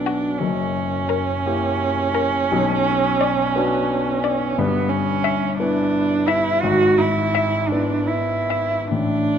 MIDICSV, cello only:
0, 0, Header, 1, 2, 480
1, 0, Start_track
1, 0, Tempo, 702576
1, 277, Time_signature, 12, 3, 24, 8
1, 2202, Tempo, 682594
1, 4602, Tempo, 728155
1, 5562, Tempo, 826446
1, 6312, End_track
2, 0, Start_track
2, 0, Title_t, "Cello"
2, 0, Program_c, 0, 42
2, 0, Note_on_c, 0, 62, 74
2, 262, Note_on_c, 0, 61, 93
2, 272, Note_off_c, 0, 62, 0
2, 3159, Note_on_c, 0, 59, 88
2, 3169, Note_off_c, 0, 61, 0
2, 3376, Note_on_c, 0, 61, 85
2, 3387, Note_off_c, 0, 59, 0
2, 3858, Note_off_c, 0, 61, 0
2, 3863, Note_on_c, 0, 62, 90
2, 4342, Note_on_c, 0, 64, 88
2, 4353, Note_off_c, 0, 62, 0
2, 4586, Note_on_c, 0, 66, 99
2, 4597, Note_off_c, 0, 64, 0
2, 4826, Note_on_c, 0, 64, 81
2, 4836, Note_off_c, 0, 66, 0
2, 5294, Note_on_c, 0, 62, 76
2, 5304, Note_off_c, 0, 64, 0
2, 5548, Note_on_c, 0, 64, 75
2, 5558, Note_off_c, 0, 62, 0
2, 6021, Note_on_c, 0, 62, 86
2, 6029, Note_off_c, 0, 64, 0
2, 6312, Note_off_c, 0, 62, 0
2, 6312, End_track
0, 0, End_of_file